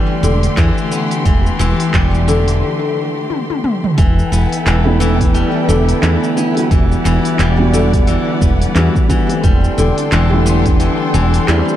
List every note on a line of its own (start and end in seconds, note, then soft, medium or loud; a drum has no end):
0.00 1.23 D3 medium
0.00 0.28 E3 loud
0.00 0.28 G3 medium
0.00 3.94 A3 medium
0.00 0.91 B3 medium
0.00 3.94 G4 medium
0.00 3.94 C6 medium
0.23 0.47 E1 medium
0.23 1.31 D3 medium
0.23 shaker medium
0.43 open hi-hat medium
0.43 shaker soft
0.57 0.70 E2 medium
0.57 1.24 E3 loud
0.57 kick loud
0.57 clap medium
0.57 open hi-hat soft
0.57 shaker soft
0.78 shaker soft
0.91 4.02 B3 medium
0.91 shaker medium
1.11 open hi-hat medium
1.11 shaker soft
1.25 1.49 E1 medium
1.25 1.58 E3 medium
1.25 3.96 E3 medium
1.25 kick loud
1.25 open hi-hat soft
1.25 shaker soft
1.46 shaker soft
1.59 1.72 E1 medium
1.59 2.33 E3 loud
1.59 clap soft
1.59 shaker medium
1.80 open hi-hat medium
1.80 shaker soft
1.94 2.62 E1 medium
1.94 2.33 G3 medium
1.94 kick loud
1.94 clap medium
1.94 open hi-hat soft
1.94 shaker soft
2.15 shaker soft
2.28 4.03 D3 medium
2.28 shaker medium
2.48 open hi-hat medium
2.48 shaker soft
3.30 high tom medium
3.50 high tom medium
3.64 mid tom medium
3.84 mid tom medium
3.98 4.22 E1 medium
3.98 4.65 E3 loud
3.98 9.40 E4 medium
3.98 6.68 A4 medium
3.98 6.68 B4 medium
3.98 6.68 G5 medium
3.98 kick loud
3.98 open hi-hat soft
3.98 shaker soft
4.19 shaker soft
4.32 4.45 E1 medium
4.32 6.36 B3 medium
4.32 shaker medium
4.53 open hi-hat medium
4.53 shaker soft
4.66 5.42 E1 medium
4.66 4.99 E3 medium
4.66 clap loud
4.66 open hi-hat soft
4.66 shaker soft
4.84 5.98 A3 medium
4.84 5.99 B3 medium
4.84 6.00 D4 medium
4.84 6.00 E4 loud
5.00 5.74 E3 loud
5.00 shaker medium
5.20 kick loud
5.20 open hi-hat medium
5.20 shaker soft
5.34 5.74 G3 medium
5.34 open hi-hat soft
5.34 shaker soft
5.69 5.92 E1 medium
5.69 6.76 D3 medium
5.69 shaker medium
5.89 open hi-hat medium
5.89 shaker soft
6.02 6.15 E2 medium
6.02 6.70 E3 loud
6.02 6.33 A3 loud
6.02 6.33 B3 medium
6.02 6.34 D4 medium
6.02 6.34 E4 loud
6.02 clap loud
6.02 open hi-hat soft
6.02 shaker soft
6.24 shaker soft
6.36 6.53 A3 medium
6.36 6.54 B3 medium
6.36 8.41 B3 medium
6.36 6.54 D4 medium
6.36 6.54 E4 loud
6.36 shaker medium
6.55 7.53 G3 medium
6.55 7.54 B3 medium
6.55 7.55 D4 medium
6.55 open hi-hat medium
6.55 shaker soft
6.59 7.55 F#4 medium
6.71 6.94 E1 loud
6.71 7.04 E3 medium
6.71 9.41 G3 medium
6.71 9.41 D5 medium
6.71 9.41 F#5 medium
6.71 kick loud
6.71 open hi-hat soft
6.71 shaker soft
6.92 shaker soft
7.05 7.17 E1 medium
7.05 7.78 E3 loud
7.05 clap soft
7.05 shaker medium
7.25 open hi-hat medium
7.25 shaker soft
7.39 8.15 E1 medium
7.39 7.78 G3 medium
7.39 clap loud
7.39 open hi-hat soft
7.39 shaker soft
7.57 8.71 G3 medium
7.57 8.72 B3 medium
7.57 8.72 D4 medium
7.57 8.73 F#4 loud
7.73 9.49 D3 medium
7.73 shaker medium
7.93 kick loud
7.93 open hi-hat medium
7.93 shaker soft
8.07 8.74 E3 loud
8.07 open hi-hat soft
8.07 shaker soft
8.41 8.65 E1 medium
8.41 10.45 B3 medium
8.41 kick medium
8.41 shaker medium
8.62 open hi-hat medium
8.62 shaker soft
8.75 8.88 E2 medium
8.75 9.08 E3 medium
8.75 9.06 G3 medium
8.75 9.06 B3 medium
8.75 9.06 D4 medium
8.75 9.07 F#4 loud
8.75 clap loud
8.75 open hi-hat soft
8.75 shaker soft
8.96 kick loud
8.96 shaker soft
9.09 9.49 E3 medium
9.09 9.26 G3 medium
9.09 9.26 B3 medium
9.09 9.27 D4 medium
9.09 9.27 F#4 loud
9.09 kick medium
9.09 shaker medium
9.28 10.26 G3 medium
9.28 10.27 A3 medium
9.28 10.28 C4 medium
9.28 10.28 E4 medium
9.28 open hi-hat medium
9.28 shaker soft
9.43 9.67 E1 loud
9.43 9.83 G3 medium
9.43 11.77 D4 medium
9.43 11.77 A4 medium
9.43 11.77 G5 medium
9.43 11.77 C6 medium
9.43 kick loud
9.43 open hi-hat soft
9.43 shaker medium
9.64 shaker soft
9.78 9.90 E1 medium
9.78 11.77 D3 medium
9.78 shaker medium
9.98 open hi-hat medium
9.98 shaker soft
10.12 10.88 E1 medium
10.12 10.79 E3 loud
10.12 clap loud
10.12 open hi-hat soft
10.12 shaker soft
10.30 11.44 G3 medium
10.30 11.44 A3 medium
10.34 11.46 E4 loud
10.46 11.77 B3 medium
10.46 shaker medium
10.66 kick loud
10.66 open hi-hat medium
10.66 shaker soft
10.80 11.13 E3 medium
10.80 open hi-hat soft
10.80 shaker soft
11.14 11.38 E1 medium
11.14 11.77 E3 loud
11.14 shaker medium
11.34 open hi-hat medium
11.34 shaker soft
11.47 11.61 E2 medium
11.47 11.77 G3 loud
11.47 11.77 G3 medium
11.47 11.77 A3 medium
11.47 11.77 C4 medium
11.47 11.77 E4 loud
11.47 clap loud
11.47 open hi-hat soft
11.47 shaker soft
11.69 shaker soft